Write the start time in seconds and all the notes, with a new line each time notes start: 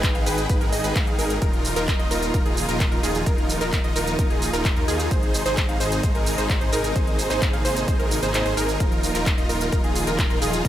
Already playing: G#1 D#3 G#3 B3 G5
0.03 kick, clap, closed hi-hat, shaker
0.15 G#1 D#4 G#4 F5, closed hi-hat
0.26 G#1 D#4 G#4 B4, open hi-hat, shaker
0.38 closed hi-hat, shaker
0.49 G#1 D#4 G#4 B4, kick, closed hi-hat, shaker
0.61 G#1 D#4 G#4 A#4, closed hi-hat
0.72 G#1 D#4 G#4 D#5, open hi-hat, shaker
0.84 G#1 D#4 G#4 B4, closed hi-hat, shaker
0.95 G#2 D#4 G#4 F5, kick, clap, closed hi-hat, shaker
1.07 closed hi-hat
1.19 G#1 D#4 G#4 A#4, open hi-hat, shaker
1.30 closed hi-hat, shaker
1.42 D#1 F3 A#3 D#4 F4 A#4, kick, closed hi-hat, shaker
1.53 closed hi-hat
1.65 open hi-hat, shaker
1.76 D#1 D#4 F4 A#4, clap, closed hi-hat, shaker
1.88 kick, clap, closed hi-hat, shaker
1.99 D#1 D#4 F4 D#5, closed hi-hat
2.11 D#1 D#4 F4 A#4, open hi-hat, shaker
2.23 closed hi-hat, shaker
2.34 D#1 D#4 F4 A#4, kick, closed hi-hat, shaker
2.45 D#1 D#4 F4 G#4, closed hi-hat
2.57 open hi-hat, shaker
2.68 D#1 D#4 F4 A#4, closed hi-hat, shaker
2.80 kick, clap, closed hi-hat, shaker
2.92 D#1 D#4 F4 A#4, closed hi-hat
3.03 D#1 D#4 F4 G#4, open hi-hat, shaker
3.15 closed hi-hat, shaker
3.26 D#1 D#4 F4 A#4, kick, closed hi-hat, shaker
3.38 closed hi-hat
3.49 open hi-hat, shaker
3.61 D#1 D#4 F4 A#4, clap, closed hi-hat, shaker
3.73 kick, clap, closed hi-hat, shaker
3.84 D#1 D#4 F4 D#5, closed hi-hat
3.96 D#1 D#4 F4 A#4, open hi-hat, shaker
4.07 closed hi-hat, shaker
4.19 D#1 D#4 F4 A#4, kick, closed hi-hat, shaker
4.30 D#1 D#4 F4 G#4, closed hi-hat
4.42 open hi-hat, shaker
4.53 D#1 D#4 F4 A#4, closed hi-hat, shaker
4.65 kick, clap, closed hi-hat, shaker
4.76 D#2 D#4 F4 A#4, closed hi-hat
4.88 D#2 D#4 F4 G#4, open hi-hat, shaker
5.00 closed hi-hat, shaker
5.11 G#1 C3 G#3 D#4 G#4 C5, kick, closed hi-hat, shaker
5.23 closed hi-hat
5.34 open hi-hat, shaker
5.46 G#1 D#4 G#4 C5, clap, closed hi-hat, shaker
5.57 kick, clap, closed hi-hat, shaker
5.69 G#1 D#4 G#4 F5, closed hi-hat
5.80 G#1 D#4 G#4 C5, open hi-hat, shaker
5.92 closed hi-hat, shaker
6.03 G#1 D#4 G#4 C5, kick, closed hi-hat, shaker
6.15 G#1 D#4 G#4 A#4, closed hi-hat
6.26 open hi-hat, shaker
6.38 G#1 D#4 G#4 C5, closed hi-hat, shaker
6.50 kick, clap, closed hi-hat, shaker
6.61 G#1 D#4 G#4 C5, closed hi-hat
6.73 G#1 D#4 G#4 A#4, open hi-hat, shaker
6.84 closed hi-hat, shaker
6.95 G#1 A#3 G#4 C5, kick, closed hi-hat, shaker
7.07 closed hi-hat
7.19 open hi-hat, shaker
7.30 G#1 D#4 G#4 C5, clap, closed hi-hat, shaker
7.42 kick, clap, closed hi-hat, shaker
7.53 G#1 D#4 G#4 F5, closed hi-hat
7.65 G#1 D#4 G#4 C5, open hi-hat, shaker
7.76 closed hi-hat, shaker
7.88 G#1 D#4 G#4 C5, kick, closed hi-hat, shaker
7.99 G#1 D#4 G#4 A#4, closed hi-hat
8.11 open hi-hat, shaker
8.23 G#1 D#4 G#4 C5, closed hi-hat, shaker
8.34 clap, closed hi-hat, shaker
8.46 G#1 D#4 G#4 C5, closed hi-hat
8.57 G#1 D#4 G#4 A#4, open hi-hat, shaker
8.69 closed hi-hat, shaker
8.80 D#1 D#3 F3 A#3 D#4 F4 A#4, kick, closed hi-hat, shaker
8.92 closed hi-hat
9.03 open hi-hat, shaker
9.15 D#1 D#4 F4 A#4, clap, closed hi-hat, shaker
9.26 kick, clap, closed hi-hat, shaker
9.38 D#1 D#4 F4 D#5, closed hi-hat
9.49 D#1 D#4 F4 A#4, open hi-hat, shaker
9.61 closed hi-hat, shaker
9.72 D#1 D#4 F4 A#4, kick, closed hi-hat, shaker
9.84 D#1 D#4 F4 G#4, closed hi-hat
9.96 open hi-hat, shaker
10.07 D#1 D#4 F4 A#4, closed hi-hat, shaker
10.19 kick, clap, closed hi-hat, shaker
10.30 D#1 D#4 F4 A#4, closed hi-hat
10.42 D#1 D#4 F4 G#4, open hi-hat, shaker
10.53 closed hi-hat, shaker
10.65 D#1 C4 D#4 A#4, kick, closed hi-hat